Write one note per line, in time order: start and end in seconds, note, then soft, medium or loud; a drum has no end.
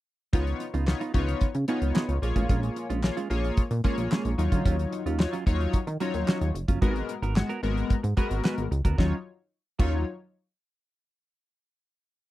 0.33 0.54 C#2 loud
0.33 0.65 B3 loud
0.33 0.51 B3 medium
0.33 0.65 D#4 medium
0.33 0.46 D#4 medium
0.33 0.65 F4 medium
0.33 0.46 F4 medium
0.33 0.65 C#5 loud
0.33 kick loud
0.33 closed hi-hat medium
0.47 muted clean electric guitar stroke soft
0.47 closed hi-hat soft
0.60 muted clean electric guitar stroke soft
0.60 closed hi-hat medium
0.74 0.94 C#2 medium
0.74 0.86 B3 soft
0.74 0.86 D#4 medium
0.74 0.87 F4 medium
0.74 closed hi-hat medium
0.87 1.01 B3 medium
0.87 1.01 D#4 medium
0.87 1.01 F4 medium
0.87 1.02 C#5 loud
0.87 snare loud
0.87 clap medium
1.00 1.13 B3 medium
1.00 1.13 D#4 medium
1.00 1.14 F4 medium
1.00 closed hi-hat medium
1.14 1.35 C#2 medium
1.14 1.46 B3 loud
1.14 1.46 D#4 loud
1.14 1.46 F4 medium
1.14 1.46 C#5 loud
1.14 kick loud
1.14 closed hi-hat medium
1.28 muted clean electric guitar stroke medium
1.28 closed hi-hat medium
1.41 1.47 C#3 soft
1.41 kick loud
1.41 closed hi-hat medium
1.55 1.65 C#3 medium
1.55 muted clean electric guitar stroke soft
1.55 closed hi-hat medium
1.68 2.16 B3 medium
1.68 1.86 B3 medium
1.68 2.16 D#4 medium
1.68 1.81 D#4 medium
1.68 2.16 F4 medium
1.68 1.81 G#4 loud
1.68 2.16 C#5 loud
1.68 closed hi-hat medium
1.82 1.92 C#2 medium
1.82 muted clean electric guitar stroke soft
1.82 closed hi-hat medium
1.95 2.13 B3 medium
1.95 2.08 D#4 medium
1.95 2.08 G#4 loud
1.95 snare loud
1.95 clap medium
2.09 2.19 C#2 loud
2.09 muted clean electric guitar stroke soft
2.09 closed hi-hat medium
2.22 2.33 A#1 loud
2.22 2.87 A#3 medium
2.22 2.87 F4 medium
2.22 2.87 G#4 medium
2.22 2.88 C#5 loud
2.22 muted clean electric guitar stroke soft
2.22 closed hi-hat medium
2.36 2.46 A1 medium
2.36 2.48 G#3 medium
2.36 2.48 C#4 medium
2.36 2.49 F4 medium
2.36 kick medium
2.36 closed hi-hat medium
2.49 2.70 A#1 loud
2.49 2.67 G#3 medium
2.49 2.62 C#4 medium
2.49 2.61 F4 medium
2.49 kick loud
2.49 closed hi-hat medium
2.63 muted clean electric guitar stroke soft
2.63 closed hi-hat soft
2.76 muted clean electric guitar stroke soft
2.76 closed hi-hat medium
2.90 3.11 A#1 loud
2.90 3.02 G#3 medium
2.90 3.02 C#4 medium
2.90 3.03 F4 medium
2.90 closed hi-hat medium
3.03 3.17 A#3 medium
3.03 3.17 F4 medium
3.03 3.17 G#4 medium
3.03 3.18 C#5 loud
3.03 snare loud
3.03 clap medium
3.17 3.29 G#3 medium
3.17 3.30 C#4 medium
3.17 3.30 F4 medium
3.17 closed hi-hat medium
3.30 3.51 A#1 medium
3.30 3.62 A#3 medium
3.30 3.62 F4 loud
3.30 3.62 G#4 medium
3.30 3.62 C#5 loud
3.30 closed hi-hat medium
3.44 muted clean electric guitar stroke soft
3.44 closed hi-hat soft
3.57 3.63 A#2 soft
3.57 kick loud
3.57 closed hi-hat medium
3.71 3.81 A#2 loud
3.71 muted clean electric guitar stroke soft
3.71 closed hi-hat medium
3.84 4.02 G#3 medium
3.84 4.32 A#3 loud
3.84 3.98 C#4 medium
3.84 4.32 F4 medium
3.84 4.32 G#4 medium
3.84 3.98 G#4 medium
3.84 4.32 C#5 loud
3.84 kick medium
3.84 closed hi-hat medium
3.98 4.08 A#1 medium
3.98 muted clean electric guitar stroke soft
3.98 closed hi-hat medium
4.11 4.29 G#3 medium
4.11 4.25 C#4 medium
4.11 4.25 G#4 medium
4.11 snare loud
4.11 clap loud
4.25 4.35 A#1 loud
4.25 muted clean electric guitar stroke soft
4.25 closed hi-hat medium
4.38 4.49 D#2 loud
4.38 5.03 F#3 medium
4.38 5.03 D#4 medium
4.38 5.03 F4 medium
4.38 5.03 C#5 medium
4.38 muted clean electric guitar stroke soft
4.38 closed hi-hat medium
4.52 4.62 D2 medium
4.52 4.64 F#3 soft
4.52 4.65 C#4 soft
4.52 4.65 F4 medium
4.52 kick medium
4.52 closed hi-hat medium
4.65 4.86 D#2 loud
4.65 4.83 F#3 medium
4.65 4.78 C#4 medium
4.65 4.78 F4 loud
4.65 kick loud
4.65 closed hi-hat medium
4.79 muted clean electric guitar stroke soft
4.79 closed hi-hat soft
4.92 muted clean electric guitar stroke soft
4.92 closed hi-hat medium
5.06 5.27 D#2 loud
5.06 5.18 F#3 soft
5.06 5.19 C#4 medium
5.06 5.19 F4 medium
5.06 closed hi-hat medium
5.19 5.33 F#3 medium
5.19 5.33 D#4 medium
5.19 5.34 F4 medium
5.19 5.34 C#5 loud
5.19 snare loud
5.19 clap medium
5.33 5.45 F#3 medium
5.33 5.46 C#4 medium
5.33 5.46 F4 medium
5.33 closed hi-hat medium
5.46 5.67 D#2 medium
5.46 5.78 F#3 loud
5.46 5.78 D#4 loud
5.46 5.79 F4 medium
5.46 5.79 C#5 loud
5.46 muted clean electric guitar stroke soft
5.46 kick loud
5.46 closed hi-hat medium
5.60 muted clean electric guitar stroke soft
5.60 closed hi-hat soft
5.73 5.79 D#3 soft
5.73 kick loud
5.73 closed hi-hat medium
5.87 5.97 D#3 loud
5.87 muted clean electric guitar stroke soft
5.87 closed hi-hat medium
6.00 6.18 F#3 medium
6.00 6.48 F#3 medium
6.00 6.13 C#4 medium
6.00 6.48 D#4 medium
6.00 6.49 F4 medium
6.00 6.14 F#4 medium
6.00 6.49 C#5 loud
6.00 closed hi-hat medium
6.14 6.25 D#2 medium
6.14 muted clean electric guitar stroke soft
6.14 closed hi-hat medium
6.27 6.45 F#3 medium
6.27 6.41 C#4 medium
6.27 6.41 F#4 medium
6.27 snare loud
6.27 clap medium
6.41 6.52 D#2 medium
6.41 muted clean electric guitar stroke medium
6.41 closed hi-hat medium
6.55 6.65 F#1 medium
6.55 muted clean electric guitar stroke soft
6.55 closed hi-hat medium
6.68 6.79 G1 medium
6.68 6.83 F#3 medium
6.68 6.81 C#4 medium
6.68 6.82 F4 medium
6.68 kick medium
6.68 closed hi-hat medium
6.82 7.03 G#1 loud
6.82 7.14 G#3 loud
6.82 6.99 B3 medium
6.82 7.14 B3 medium
6.82 6.95 F#4 medium
6.82 7.14 F#4 medium
6.82 7.14 A#4 loud
6.82 6.94 A#4 medium
6.82 kick loud
6.82 closed hi-hat medium
6.95 muted clean electric guitar stroke soft
6.95 closed hi-hat soft
7.09 muted clean electric guitar stroke soft
7.09 closed hi-hat medium
7.22 7.43 G#1 loud
7.22 7.35 B3 soft
7.22 7.35 F#4 medium
7.22 7.36 A#4 medium
7.22 closed hi-hat medium
7.36 7.50 G#3 medium
7.36 7.50 B3 medium
7.36 7.50 F#4 medium
7.36 7.51 C#5 medium
7.36 muted clean electric guitar stroke soft
7.36 snare loud
7.36 clap medium
7.49 7.62 B3 medium
7.49 7.62 F#4 medium
7.49 7.62 A#4 medium
7.49 closed hi-hat soft
7.63 7.84 G#1 medium
7.63 7.95 G#3 medium
7.63 7.95 B3 medium
7.63 7.95 F#4 loud
7.63 7.95 A#4 loud
7.63 closed hi-hat medium
7.76 muted clean electric guitar stroke soft
7.76 closed hi-hat soft
7.90 7.96 G#2 soft
7.90 kick medium
7.90 closed hi-hat medium
8.03 8.14 G#2 loud
8.03 muted clean electric guitar stroke soft
8.03 closed hi-hat medium
8.17 8.64 G#3 medium
8.17 8.35 B3 medium
8.17 8.65 B3 medium
8.17 8.65 F#4 medium
8.17 8.30 F#4 medium
8.17 8.65 A#4 loud
8.17 8.30 B4 loud
8.17 kick medium
8.17 closed hi-hat medium
8.31 8.41 G#1 medium
8.31 muted clean electric guitar stroke medium
8.31 closed hi-hat medium
8.44 8.62 B3 medium
8.44 8.57 F#4 medium
8.44 8.57 B4 medium
8.44 snare loud
8.44 clap loud
8.58 8.68 G#1 medium
8.58 muted clean electric guitar stroke medium
8.58 closed hi-hat medium
8.71 8.82 C#2 loud
8.71 muted clean electric guitar stroke soft
8.71 closed hi-hat medium
8.85 8.95 D2 medium
8.85 8.98 B3 medium
8.85 8.99 F#4 medium
8.85 8.98 A#4 medium
8.85 kick medium
8.85 closed hi-hat medium
8.98 9.13 D#2 loud
8.98 9.14 F#3 medium
8.98 9.13 F#3 medium
8.98 9.15 C#4 medium
8.98 9.13 D#4 medium
8.98 9.13 F4 medium
8.98 9.15 F4 medium
8.98 9.13 C#5 medium
8.98 kick medium
8.98 snare medium
9.79 10.05 D#2 loud
9.79 9.95 F#3 medium
9.79 10.05 F#3 medium
9.79 9.96 C#4 medium
9.79 10.05 D#4 medium
9.79 10.05 F4 medium
9.79 9.96 F4 medium
9.79 10.05 C#5 loud
9.79 kick loud
9.79 crash medium